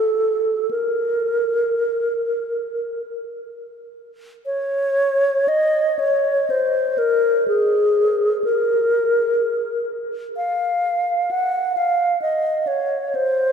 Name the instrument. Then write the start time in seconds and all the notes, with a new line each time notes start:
alto flute
Already playing: A4
0.71 A#4
4.46 C#5
5.48 D#5
5.99 C#5
6.50 C5
6.98 A#4
7.48 G#4
8.44 A#4
10.37 F5
11.31 F#5
11.77 F5
12.22 D#5
12.67 C#5
13.15 C5